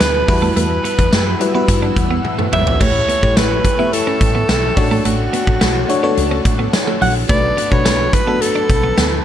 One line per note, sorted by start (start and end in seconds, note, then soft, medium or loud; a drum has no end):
0.00 0.21 D2 loud
0.00 0.28 B2 medium
0.00 0.29 F#3 medium
0.00 0.31 A3 medium
0.00 0.28 B3 medium
0.00 0.09 B3 medium
0.00 0.30 D4 medium
0.00 0.29 F#4 medium
0.00 0.26 B4 medium
0.00 0.29 B4 medium
0.00 0.53 B4 loud
0.00 0.27 A5 medium
0.00 snare loud
0.00 closed hi-hat medium
0.00 tambourine medium
0.28 0.49 E2 loud
0.28 1.66 E3 medium
0.28 1.26 G3 medium
0.28 2.78 G3 medium
0.28 0.85 B3 medium
0.28 0.83 E4 medium
0.28 1.27 E4 medium
0.28 1.27 F#4 medium
0.28 1.27 B4 loud
0.28 2.78 F#5 medium
0.28 2.78 E6 medium
0.28 muted clean electric guitar stroke soft
0.28 kick loud
0.28 open hi-hat medium
0.42 0.51 A3 medium
0.56 0.77 E2 loud
0.56 0.65 A3 medium
0.56 1.65 B4 medium
0.56 closed hi-hat medium
0.83 0.93 B3 medium
0.83 1.69 B3 soft
0.83 1.73 E4 medium
0.83 closed hi-hat medium
0.98 1.09 E2 medium
0.98 muted clean electric guitar stroke soft
0.98 kick medium
0.98 closed hi-hat soft
1.12 1.33 F#2 medium
1.12 1.22 A3 medium
1.12 snare loud
1.12 closed hi-hat medium
1.12 tambourine medium
1.27 muted clean electric guitar stroke soft
1.40 1.53 G3 medium
1.40 1.53 E4 medium
1.40 1.53 F#4 medium
1.40 1.53 B4 medium
1.40 closed hi-hat medium
1.54 2.52 G3 medium
1.54 1.64 B3 medium
1.54 2.53 E4 medium
1.54 2.53 F#4 medium
1.54 2.53 B4 loud
1.67 1.90 G2 medium
1.67 2.80 E3 medium
1.67 2.82 B3 medium
1.67 kick loud
1.67 closed hi-hat medium
1.73 2.83 E4 medium
1.82 1.92 D4 medium
1.96 2.18 E2 medium
1.96 muted clean electric guitar stroke soft
1.96 kick loud
1.96 closed hi-hat medium
2.11 2.20 B3 medium
2.25 muted clean electric guitar stroke soft
2.25 high tom medium
2.39 2.48 A3 medium
2.39 mid tom medium
2.52 2.74 G#1 medium
2.52 2.62 G3 medium
2.52 2.83 E5 loud
2.52 mid tom medium
2.67 floor tom medium
2.80 3.02 A1 loud
2.80 3.08 A2 medium
2.80 3.09 E3 medium
2.80 3.17 A3 medium
2.80 2.90 A3 medium
2.80 3.07 A3 medium
2.80 3.17 E4 medium
2.80 3.18 G4 medium
2.80 4.75 A4 medium
2.80 3.38 C#5 loud
2.80 3.18 C#5 medium
2.80 4.75 G5 medium
2.80 4.75 C#6 medium
2.80 kick loud
2.80 crash medium
3.08 3.93 E3 soft
3.08 3.95 A3 medium
3.08 3.18 B3 medium
3.08 closed hi-hat medium
3.22 3.33 A2 medium
3.22 3.72 A3 medium
3.22 3.72 E4 medium
3.22 3.72 G4 medium
3.22 3.72 C#5 medium
3.22 muted clean electric guitar stroke soft
3.22 kick medium
3.37 3.58 A1 medium
3.37 3.46 A3 medium
3.37 3.95 B4 loud
3.37 snare loud
3.37 closed hi-hat medium
3.37 tambourine medium
3.51 muted clean electric guitar stroke soft
3.65 kick medium
3.65 closed hi-hat medium
3.78 4.75 A3 medium
3.78 3.88 B3 medium
3.78 4.77 E4 medium
3.78 4.77 G4 medium
3.78 4.77 E5 medium
3.92 4.77 A2 medium
3.92 4.78 E3 medium
3.92 4.77 A3 medium
3.92 5.05 A4 loud
3.92 closed hi-hat medium
4.07 4.16 C#4 medium
4.21 4.42 A1 medium
4.21 muted clean electric guitar stroke soft
4.21 kick loud
4.21 closed hi-hat medium
4.35 4.44 B3 medium
4.49 4.70 B1 loud
4.49 4.58 B3 medium
4.49 snare loud
4.49 closed hi-hat medium
4.49 tambourine medium
4.76 4.98 A1 loud
4.76 6.15 D3 medium
4.76 5.75 A3 loud
4.76 5.35 A3 medium
4.76 5.32 D4 medium
4.76 5.75 D4 medium
4.76 5.75 F#4 medium
4.76 7.27 A4 medium
4.76 5.75 C#5 medium
4.76 7.27 F#5 medium
4.76 muted clean electric guitar stroke soft
4.76 kick loud
4.76 open hi-hat medium
4.91 5.00 A3 medium
5.05 5.26 A1 loud
5.05 5.14 A3 medium
5.05 6.14 F#4 medium
5.05 closed hi-hat medium
5.32 6.19 A3 soft
5.32 5.42 B3 medium
5.32 6.22 D4 medium
5.32 closed hi-hat medium
5.47 5.58 A1 medium
5.47 muted clean electric guitar stroke soft
5.47 kick medium
5.61 5.82 B1 medium
5.61 5.70 A3 medium
5.61 snare loud
5.61 closed hi-hat medium
5.61 tambourine medium
5.75 muted clean electric guitar stroke soft
5.88 6.01 A3 medium
5.88 6.01 D4 medium
5.88 6.01 F#4 medium
5.88 6.02 C#5 loud
5.88 closed hi-hat medium
6.03 7.01 A3 medium
6.03 6.12 B3 medium
6.03 7.01 D4 medium
6.03 7.01 F#4 medium
6.03 7.02 C#5 loud
6.15 6.38 C#2 loud
6.15 7.28 D3 medium
6.15 7.30 A3 medium
6.15 closed hi-hat medium
6.22 7.32 D4 medium
6.31 6.40 C#4 medium
6.45 6.66 A1 medium
6.45 muted clean electric guitar stroke soft
6.45 kick loud
6.45 closed hi-hat medium
6.59 6.68 B3 medium
6.73 muted clean electric guitar stroke soft
6.73 snare loud
6.73 closed hi-hat medium
6.73 tambourine medium
6.87 6.96 A3 medium
7.01 7.22 A#1 loud
7.01 7.10 F#3 medium
7.01 7.14 F#5 loud
7.01 open hi-hat medium
7.29 7.50 B1 loud
7.29 7.57 B2 medium
7.29 7.58 F#3 medium
7.29 7.66 A3 medium
7.29 7.38 A3 medium
7.29 7.55 B3 medium
7.29 7.66 D4 medium
7.29 7.66 F#4 medium
7.29 9.24 B4 medium
7.29 7.66 B4 medium
7.29 7.73 D5 loud
7.29 9.24 A5 medium
7.29 kick loud
7.29 closed hi-hat medium
7.57 8.42 F#3 soft
7.57 8.43 B3 medium
7.57 7.66 B3 medium
7.57 closed hi-hat medium
7.71 7.82 B2 medium
7.71 8.20 A3 medium
7.71 8.20 D4 medium
7.71 8.21 F#4 medium
7.71 8.21 B4 medium
7.71 8.15 C#5 loud
7.71 muted clean electric guitar stroke soft
7.71 kick medium
7.85 8.06 B1 medium
7.85 7.94 A3 medium
7.85 snare loud
7.85 closed hi-hat medium
7.85 tambourine medium
8.00 muted clean electric guitar stroke soft
8.13 8.43 B4 medium
8.13 kick medium
8.13 closed hi-hat medium
8.27 9.25 A3 medium
8.27 8.36 B3 medium
8.27 9.25 D4 medium
8.27 9.25 F#4 medium
8.27 9.25 A4 medium
8.40 9.25 B2 medium
8.40 9.25 F#3 medium
8.40 9.25 B3 medium
8.40 9.25 A4 loud
8.40 closed hi-hat medium
8.55 8.64 D4 medium
8.69 8.91 B1 medium
8.69 muted clean electric guitar stroke soft
8.69 kick loud
8.69 closed hi-hat medium
8.83 8.92 B3 medium
8.98 9.19 D2 loud
8.98 9.07 B3 medium
8.98 snare loud
8.98 closed hi-hat medium
8.98 tambourine medium